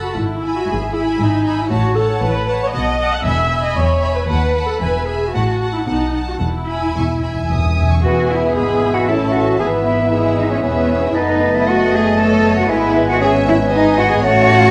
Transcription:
Already playing: F#5 A5 B5
0.05 F#4
0.16 G#1 G#2 E4
0.42 E5 G#5 B5
0.58 F#4
0.68 G#1 G#2 G#4
0.94 E4 E5 G#5 B5
1.20 G#1 G#2 D#4
1.45 E5 G#5 B5
1.61 E4
1.70 A1 A2 F#4 C#5 F#5 A5
1.96 A4 C#5 F#5 A5
2.23 A1 A2 B4
2.47 C#5 F#5 A5
2.64 C#5
2.73 B1 B2 D#5 F#5 A5
2.99 F#5 A5
3.14 F#5
3.25 E1 E2 E5 G#5 B5
3.50 E5 G#5 B5
3.65 D#5
3.77 E1 E2 C#5
4.01 E5 G#5 B5
4.16 B4
4.28 D#2 B4 F#5 A5 B5
4.55 F#5 A5 B5
4.68 A4
4.81 E1 E2 B4 E5 G#5 B5
5.08 G#4 E5 G#5 B5
5.34 A1 A2 F#4 F#5 A5
5.61 F#5 A5
5.75 E4
5.87 B1 B2 D#4 F#5 A5
6.14 F#5 A5
6.29 F#4
6.41 E1 E2 E4
6.49 E2
6.56 E2
6.64 E2
6.69 E5 G#5 B5
6.73 E2
6.82 E2
6.89 E2
6.96 E1 E2 C#6
7.05 E2
7.12 E2
7.20 E2 E5
7.24 G#5 B5
7.28 E2
7.35 E2
7.44 E2
7.50 E1 E2 D#6
7.59 E2
7.66 E2
7.74 E2 E5 G#5
7.82 E2
7.89 E2 C#6
8.04 E2 E3 B3 F#4 G#4 B4 E5 F#5 G#5
8.30 E4 E5
8.55 G#1 G#3 G#4 G#5 B5
8.94 F#4 F#5
9.07 A1 A3 C#4 E4 A4 C#5 E5 A5
9.33 F#4 F#5
9.59 G#1 B3 G#4 B4 E5 G#5
9.84 E4 E5
10.11 G#3 B3 E4 G#4 E5
10.37 D#4 D#5
10.50 C#4 C#5
10.63 E1 B3 C#4 G#4 B4 E5
11.02 E4 E5
11.14 F#1 B3 D#4 B4 D#5 A5
11.18 A3
11.54 E4 E5
11.65 A3 F#4 D#5 F#5
11.93 G#4 G#5
12.18 A3 A4 C#5 A5
12.56 F#4 F#5
12.69 G#1 G#3 B3 E4 B4 E5 G#5
13.07 F#4 F#5
13.21 C#4 G#4 E5 G#5
13.47 E4 E5
13.71 B3 D#4 D#5 G#5
13.75 B3
13.98 F#4 F#5
14.10 G#4 G#5
14.23 A1 A3 C#4 F#4 C#5 F#5 A5
14.49 F#5

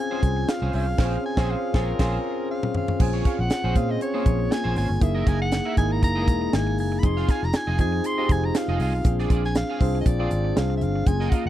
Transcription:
Already playing: C4 C#4 F4 G#4
0.00 G#5
0.11 C4 C#4 F4 G#4 C5
0.23 C2, muted clean electric guitar stroke, kick, closed hi-hat
0.36 muted clean electric guitar stroke
0.48 F5, muted clean electric guitar stroke, snare, closed hi-hat
0.62 C2 C#4 G#4 C5
0.73 C2 C#4 G#4 C5 F5, open hi-hat
0.87 B1, muted clean electric guitar stroke
0.98 A#1 C4 C#4 F4 G#4 C5, kick, snare, crash
1.05 G#4
1.26 G#5
1.37 A#1 C4 C#4 F4 G#4 C5, kick, snare
1.44 G#4
1.51 F5
1.74 A#1 C4 C#4 F4 G#4 A#4 C#5, kick, snare
1.99 A#1 C4 C#4 F4 G#4 C5, kick, snare, crash
2.51 F5
2.63 mid tom
2.74 F5, floor tom
2.88 floor tom
3.00 A#1 C4 C#4 F4 G#4 G#5, muted clean electric guitar stroke, kick, crash
3.14 C#4 G#4 C#5
3.25 C#4 G#4 C#5 F5, kick, closed hi-hat
3.39 A#1 F#5, muted clean electric guitar stroke
3.50 muted clean electric guitar stroke, snare, closed hi-hat
3.64 A#1 C#4 G#4 C5
3.75 A#2 C4 C#4 F4 G#4 F5, muted clean electric guitar stroke, kick, closed hi-hat
3.89 D#5, muted clean electric guitar stroke
4.01 C#5, muted clean electric guitar stroke, closed hi-hat
4.14 A#3 C#4 F4 G#4 C5
4.25 A#1, muted clean electric guitar stroke, kick, closed hi-hat
4.39 muted clean electric guitar stroke
4.51 G#5, muted clean electric guitar stroke, snare, closed hi-hat
4.64 A#1 C#4 G#4 C5
4.76 G#1 C#4 G#4 C5 G#5, open hi-hat
4.89 G1, muted clean electric guitar stroke
5.01 F#1 A#3 D#4 E4 G#4 E5, muted clean electric guitar stroke, kick, closed hi-hat
5.15 E4 A#4 D#5
5.26 F#1 E4 A#4 D#5 G#5, kick, closed hi-hat
5.40 F#5, muted clean electric guitar stroke
5.52 muted clean electric guitar stroke, snare, closed hi-hat
5.65 E4 A#4 E5
5.77 G#1 A#3 D#4 E4 G#4 G#5, muted clean electric guitar stroke, kick, closed hi-hat
5.90 A#5, muted clean electric guitar stroke
6.02 F#1 A#5, muted clean electric guitar stroke, kick, closed hi-hat
6.15 G#3 D#4 E4 G#4 A#4 D#5
6.22 A#3
6.27 E1, muted clean electric guitar stroke, kick, closed hi-hat
6.41 muted clean electric guitar stroke
6.53 G#1 G#5, muted clean electric guitar stroke, snare, closed hi-hat
6.67 muted clean electric guitar stroke
6.78 F#1 G#5, open hi-hat
6.92 muted clean electric guitar stroke
6.99 C4 D#4 B5, kick, closed hi-hat
7.03 F1 F4 G#4 C6, muted clean electric guitar stroke
7.17 F4 G#4 F5, snare
7.29 F4 G#4 F5 G#5, kick, snare, closed hi-hat
7.42 F1 A#5, muted clean electric guitar stroke, snare
7.53 G#5, muted clean electric guitar stroke, snare, closed hi-hat
7.67 F1 F4 G#4 D#5
7.78 F2 C4 D#4 F4 G#4 G#5, muted clean electric guitar stroke, kick, closed hi-hat
7.92 muted clean electric guitar stroke
8.04 C6, muted clean electric guitar stroke, closed hi-hat
8.18 C4 D#4 F4 G4 G#4 D#5
8.25 G#4
8.29 F1 G#5, muted clean electric guitar stroke, kick, closed hi-hat
8.44 A#5, muted clean electric guitar stroke
8.55 F5, muted clean electric guitar stroke, snare, closed hi-hat
8.68 F1 F4 G#4 D#5
8.80 C2 F4 G#4 D#5 F5, open hi-hat
8.93 B1, muted clean electric guitar stroke
9.04 A#1 C4 C#4 F4 G#4, muted clean electric guitar stroke, kick, closed hi-hat
9.11 D4
9.19 F4 G#4 D5, snare
9.30 A#1 F4 G#4 D5, kick, closed hi-hat
9.44 G#5, muted clean electric guitar stroke, snare
9.55 F5, muted clean electric guitar stroke, snare, closed hi-hat
9.70 F4 G#4 F5
9.80 C2 C4 D4 F4 G#4, muted clean electric guitar stroke, kick, open hi-hat
9.95 muted clean electric guitar stroke
10.01 D#5
10.06 A#1 D5, muted clean electric guitar stroke, kick, closed hi-hat
10.19 C4 D4 F4 G#4 D5
10.31 G#1, muted clean electric guitar stroke, closed hi-hat
10.45 muted clean electric guitar stroke
10.56 C2 F5, muted clean electric guitar stroke, snare, closed hi-hat
10.70 muted clean electric guitar stroke
10.77 E5
10.81 G1 F5, closed hi-hat
10.95 muted clean electric guitar stroke
11.06 F#1 A3 C#4 F4 G#4 G#5, muted clean electric guitar stroke, kick, closed hi-hat
11.13 A#3
11.20 F4 A#4 D#5, snare
11.30 F4 A#4 D#5 F5 F#5, kick, closed hi-hat
11.46 F#1, muted clean electric guitar stroke

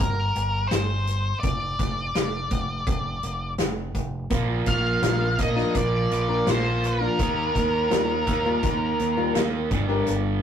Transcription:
0.00 G1 A#4, kick, closed hi-hat
0.36 G1, closed hi-hat
0.67 G1 C5, snare, closed hi-hat
1.07 closed hi-hat
1.40 F1 D5, kick, closed hi-hat
1.79 F1, kick, snare, closed hi-hat
2.15 F1, snare, closed hi-hat
2.51 F1, kick, closed hi-hat
2.87 F1, kick, closed hi-hat
3.23 F1, closed hi-hat
3.58 F1, snare, closed hi-hat
3.95 F1, kick, closed hi-hat
4.30 A#1 A#2 F3, kick, closed hi-hat
4.34 A#3
4.66 A#1 F5, muted steel-string acoustic guitar stroke, kick, snare, closed hi-hat
5.02 A#1 A#3 D4 F4 A#4, snare, closed hi-hat
5.38 A#2 F3 A#3 D#5, kick, closed hi-hat
5.56 A#3 D4 F4 A#4, snare
5.75 A#1 D5, kick, closed hi-hat
6.11 A#1 D5, closed hi-hat
6.28 A#3 D4 F4 A#4
6.47 A#1 A#2 F3 A#3 C5, snare, closed hi-hat
6.84 A#4, closed hi-hat
7.01 A#3 D4 F4 A#4
7.19 D#2 D#3 A#3 D#4, kick, closed hi-hat
7.55 D#2, muted steel-string acoustic guitar stroke, kick, closed hi-hat
7.90 D#2 G3 A#3 F4 A#4, snare, closed hi-hat
8.27 D#2 D#3 A#3 D#4, kick, closed hi-hat
8.45 G3 A#3 F4 A#4
8.63 D#2, kick, closed hi-hat
9.00 D#2, closed hi-hat
9.17 G3 A#3 F4 A#4
9.34 D#2 D#3 A#3 D#4, snare, closed hi-hat
9.71 G1 G2 D3 G3, kick, closed hi-hat
9.89 G3 D4 G4 A#4
10.07 G1, closed hi-hat

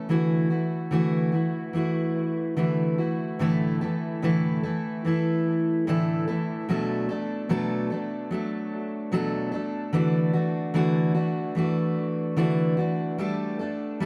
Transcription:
Already playing: C#4
0.09 D3 E3 A3 E4 F#4
0.50 A3 E4 F#4
0.91 D3 E3 A3 E4 F#4
1.32 A3 E4 F#4
1.73 E3 A3 E4 F#4
2.57 D3 E3 A3 E4 F#4
2.98 A3 E4 F#4
3.39 A2 D3 E3 A3 E4 A4
3.81 E3 A3 E4 A4
4.22 A2 D3 E3 A3 E4 A4
4.63 E3 A3 E4 A4
5.05 E3 A3 E4 A4
5.87 A2 D3 E3 A3 E4 A4
6.28 E3 A3 E4 A4
6.69 B2 F#3 A3 D4 A4
7.09 A3 D4 A4
7.49 B2 F#3 A3 D4 A4
7.90 A3 D4 A4
8.31 F#3 A3 D4 A4
9.12 B2 F#3 A3 D4 A4
9.52 A3 D4 A4
9.93 D3 E3 A3 D4 F#4
10.33 A3 D4 F#4
10.74 D3 E3 A3 D4 F#4
11.14 A3 D4 F#4
11.55 E3 A3 D4 F#4
12.37 D3 E3 A3 D4 F#4
12.77 A3 D4 F#4
13.18 G3 A3 D4 A4
13.59 A3 D4 A4
14.00 G3 A3 D4

